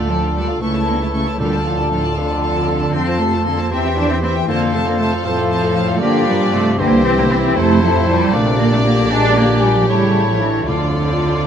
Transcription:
Already playing: D2 D3 F4 A4 D5 A5
0.00 F4 F5
0.09 A2 F3 D4 A4 D5
0.23 F4 D5 F5
0.36 A#2 G3 D4 A4 D5
0.49 F4 D5 F5
0.61 C#2 C#3 E3 A3 C#4 E4 A4 A5 C#6
0.74 E4 C#5 A5
0.88 D3 A#3 C#4 A4 C#6
1.00 C#3 A3 E4 C#5 A5
1.13 C#3 A3 C#4 A4 C#6
1.25 E4 C#5 A5
1.39 D2 A#2 D3 G3 D4 F4 A4 F5 A5
1.53 F4 D5 A5
1.66 A2 F3 D4 A4 F5
1.79 A#2 G3 F4 D5 A5
1.91 A2 F3 D4 A4 F5
2.03 F4 D5 A5
2.16 F2 D3 D4 F4 A4 F5 A5
2.28 F4 D5 A5
2.41 D4 A4 F5
2.54 F4 D5 A5
2.67 D4 A4 F5
2.81 F4 D5 A5
2.93 F2 F3 C4 F4 A4 A5 C6
3.07 F4 C5 A5
3.19 C3 A3 C4 A4 C6
3.33 F4 C5 A5
3.45 D3 A#3 C4 A4 C6
3.58 F4 C5 A5
3.71 E2 E3 C4 E4 G4 C5 E5 G5
3.84 G4 E5 G5
3.97 F3 D4 E4 C5 E5
4.09 E3 C4 G4 E5 G5
4.21 E3 C4 E4 C5 E5
4.34 G4 E5 G5
4.48 F2 D3 F3 A#3 F4 A4 C5 F5 A5
4.61 A4 F5
4.74 C3 A3 F4 C5 A5
4.86 D3 A#3 A4 F5
4.99 C3 A3 F4 C5 A5
5.12 A4 F5
5.24 A2 F3 F4 A4 C5 F5 A5
5.37 A4 F5
5.50 F4 C5 A5
5.63 A4 F5
5.76 F4 C5 A5
5.88 A4 F5
6.00 G2 D3 F3 A#3 D4 F4 G4 D5 G5
6.26 A#2 G3
6.53 C3 A3
6.79 C2 D3 E3 A#3 E4 G4 C5 G5
7.05 E3 C4
7.18 D3 A#3
7.31 E3 C4
7.43 E3 C4
7.56 F2 C3 A3 E4 A4 C5 A5
7.83 A2 F3
8.08 A#2 G3
8.33 A#1 A#2 C3 A3 D4 G4 D5 F5
8.59 D3 A#3
8.73 C3 A3
8.85 D3 A#3
8.98 D3 A#3
9.10 A#1 A#2 G#3 D4 D5 G#5
9.37 D3 A#3
9.62 A#2 G3
9.75 G#2 F3
9.88 A1 A2 C#3 G3 E4 C#5 A5
10.27 A2 F3
10.40 G2 E3
10.67 D2 F2 A2 D3 F4 D5 A5

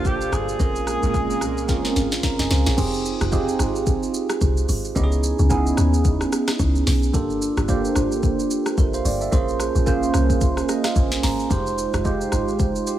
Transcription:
Already playing: A#1 A#2 A#3 D4 F4 G4 A4 C5 D5
0.05 G4, kick, shaker
0.21 shaker
0.32 G1 G#4, cross-stick, shaker
0.49 shaker
0.59 A#1 A#2 G#3 A#3 C4 C#4 F4 G#4 A#4, kick, shaker
0.76 shaker
0.87 cross-stick, shaker
1.03 G#1, shaker
1.14 kick, shaker
1.30 shaker
1.41 C2, cross-stick, shaker
1.57 shaker
1.68 C4 C#4 F4 G#4 A#4, kick, snare, shaker
1.85 snare, shaker
1.96 G#1, snare, shaker
2.12 snare, shaker
2.23 F5 A#5, kick, snare, shaker
2.39 F1 D#5 G#5, snare, shaker
2.51 C#2 C5 F5, snare, shaker
2.66 A#1 G#4 C#5, snare, shaker
2.77 F1 C4 D#4 F4 G4 G#4, kick, crash, shaker
2.94 shaker
3.05 shaker
3.21 F1, cross-stick, shaker
3.32 C4 D#4 F4 G4 G#4, kick, shaker
3.48 shaker
3.59 G#1, cross-stick, shaker
3.75 shaker
3.86 kick, shaker
4.03 shaker
4.14 shaker
4.30 cross-stick, shaker
4.41 C2, kick, shaker
4.57 shaker
4.69 G#1, open hi-hat, shaker
4.85 shaker
4.95 C#2 B3 C#4 D#4 E4 G4, kick, shaker
5.03 G#4
5.12 shaker
5.23 shaker
5.39 C#2, shaker
5.50 B3 C#4 D#4 E4 G#4, kick, shaker
5.67 shaker
5.77 D#2, cross-stick, shaker
5.94 shaker
6.05 kick, shaker
6.21 cross-stick, shaker
6.32 cross-stick, shaker
6.48 cross-stick, snare, shaker
6.59 C#2, kick, shaker
6.75 shaker
6.87 B1, snare, open hi-hat, shaker
7.03 shaker
7.13 G1 A#3 D4 F4 G4 A4, kick, shaker
7.30 shaker
7.42 shaker
7.57 G1, cross-stick, shaker
7.68 A#3 D4 F4 G4 C5, kick, shaker
7.85 shaker
7.96 G#1, cross-stick, shaker
8.12 shaker
8.23 kick, shaker
8.39 shaker
8.51 shaker
8.66 cross-stick, shaker
8.78 A#1 A#4 E5, kick, shaker
8.94 C5 F5, shaker
9.05 G1 D5 G5, open hi-hat, shaker
9.21 E5 A5, shaker
9.32 A#1 A#3 C#4 F4 G#4 C5, kick, shaker
9.48 shaker
9.60 cross-stick, shaker
9.75 A#1, shaker
9.86 A#3 C#4 F4 G#4 C5, kick, shaker
10.03 shaker
10.14 C2, cross-stick, shaker
10.30 kick, shaker
10.41 kick, shaker
10.57 cross-stick, shaker
10.69 D#5, cross-stick, shaker
10.84 F5, cross-stick, snare, shaker
10.96 A#1 G#5, kick, shaker
11.12 snare, shaker
11.23 G#1 A#5, snare, open hi-hat, shaker
11.39 shaker
11.50 F1 G#3 D#4 F4 G4 C5, kick, shaker
11.67 shaker
11.78 shaker
11.94 F1, cross-stick, shaker
12.04 G#3 D#4 F4 G4 C5, kick, shaker
12.21 shaker
12.32 G#1, cross-stick, shaker
12.48 shaker
12.59 kick, shaker
12.76 shaker
12.87 G4 C5, shaker

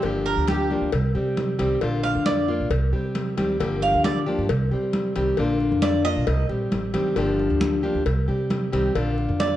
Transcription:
0.03 G1 D3 F3 A#3 D4 G4, cowbell, high conga
0.26 A#4, high conga
0.37 D2
0.47 G4, cowbell, high conga
0.70 F3 A#3 D4 G4, high conga
0.81 D2
0.92 C2, muted steel-string acoustic guitar stroke, cowbell, high conga
1.15 C3 G3 C4 G4, high conga
1.37 cowbell, high conga
1.59 C2 D#3 G3 C4 G4, cowbell, high conga
1.81 A#1 D3 A#3 D4 F4, cowbell, high conga
2.04 F5, high conga
2.15 F2
2.26 D5, cowbell, high conga
2.48 A#3 D4 F4, high conga
2.60 A#1
2.70 C2, muted steel-string acoustic guitar stroke, cowbell, high conga
2.93 C3 G3 C4 G4, high conga
3.15 cowbell, high conga
3.37 D2 D#3 G3 C4 G4, cowbell, high conga
3.60 G1 D3 F3 A#3 D4 G4, cowbell, high conga
3.82 F5, high conga
3.94 D2
4.04 D5, cowbell, high conga
4.26 F3 A#3 D4 G4, high conga
4.38 G2
4.49 C2, muted steel-string acoustic guitar stroke, cowbell, high conga
4.71 C3 G3 C4 G4, high conga
4.93 cowbell, high conga
5.16 C2 D#3 G3 C4 G4, cowbell, high conga
5.37 A#1 D3 A#3 D4 F4, cowbell, high conga
5.60 high conga
5.72 F2
5.82 D5, cowbell, high conga
6.05 A#3 D4 F4 D#5, high conga
6.16 B1
6.27 C2, muted steel-string acoustic guitar stroke, cowbell, high conga
6.49 A#1 G3 C4 G4, high conga
6.72 A1, cowbell, high conga
6.94 G1 D#3 G3 C4 G4, cowbell, high conga
7.16 G1 D3 F3 A#3 D4 G4, cowbell, high conga
7.39 high conga
7.50 D2
7.61 cowbell, high conga
7.83 F3 A#3 D4 G4, high conga
7.95 D2
8.06 C2, muted steel-string acoustic guitar stroke, cowbell, high conga
8.28 C3 G3 C4 G4, high conga
8.50 cowbell, high conga
8.72 C2 D#3 G3 C4 G4, cowbell, high conga
8.95 A#1 D3 A#3 D4 F4, cowbell, high conga
9.18 high conga
9.29 F2
9.40 D5, cowbell, high conga

